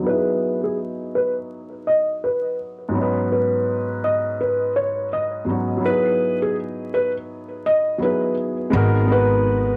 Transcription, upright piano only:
0.00 2.87 F#3 medium
0.00 2.89 B3 soft
0.06 2.91 D#4 soft
0.06 2.92 E4 medium
0.13 2.94 G#4 medium
2.89 5.40 G#2 medium
2.89 5.42 F#3 medium
2.94 5.43 B3 medium
2.94 5.44 C#4 medium
2.99 5.46 D#4 medium
2.99 5.47 B4 medium
5.45 5.82 G#2 soft
5.45 5.76 F#3 soft
5.45 5.79 B3 soft
5.45 5.84 C#4 soft
5.50 5.82 D#4 soft
5.50 5.85 F#4 soft
5.77 7.93 F#3 medium
5.77 7.95 B3 soft
5.84 7.96 D#4 soft
5.84 7.98 E4 soft
5.90 8.00 G#4 medium
7.98 8.72 F#3 soft
7.98 8.70 B3 soft
7.98 8.72 D#4 soft
8.03 8.74 E4 soft
8.03 8.75 G#4 soft
8.70 9.01 G#3 medium
8.70 9.02 B3 medium
8.70 9.03 D#4 medium
8.75 9.04 F#4 medium
8.75 9.05 A#4 medium
9.06 9.77 G#3 medium
9.06 9.77 B3 medium
9.06 9.77 D#4 medium
9.11 9.77 F#4 medium
9.11 9.77 B4 medium

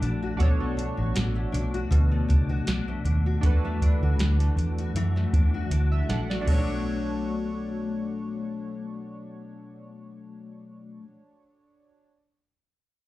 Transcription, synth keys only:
0.00 0.36 D4 medium
0.00 0.37 F#4 soft
0.00 0.39 A4 soft
0.00 0.41 D5 medium
0.37 3.38 D4 medium
0.37 3.39 F#4 medium
0.37 3.40 A4 medium
0.42 3.40 C#5 medium
3.41 6.40 D4 medium
3.41 5.29 F#4 medium
3.41 5.30 A4 medium
3.46 5.31 B4 medium
5.92 6.08 E5 medium
6.09 6.29 A4 soft
6.09 6.29 F#5 medium
6.30 6.44 F#4 soft
6.30 6.66 D5 medium
6.41 10.94 D4 medium
6.41 10.96 F#4 medium
6.48 10.98 A4 medium
6.48 10.99 C#5 medium

